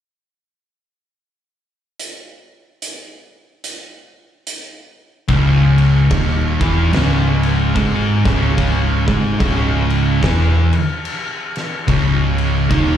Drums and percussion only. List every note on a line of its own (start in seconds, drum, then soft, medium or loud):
2.00 closed hi-hat medium
2.82 closed hi-hat medium
3.64 closed hi-hat medium
4.47 closed hi-hat medium
5.28 kick loud
5.28 crash medium
5.78 crash medium
6.10 kick loud
6.10 crash medium
6.61 kick loud
6.61 crash medium
6.93 snare loud
6.93 crash medium
7.43 crash medium
7.76 kick loud
7.76 crash medium
8.25 kick loud
8.25 snare soft
8.25 crash medium
8.58 kick loud
8.58 crash medium
9.08 kick loud
9.08 crash medium
9.40 kick loud
9.40 crash medium
9.90 crash medium
10.23 kick loud
10.23 snare loud
10.23 crash medium
10.73 crash medium
11.05 crash medium
11.55 snare soft
11.55 crash medium
11.88 kick loud
11.88 crash medium
12.38 crash medium
12.71 kick loud
12.71 crash medium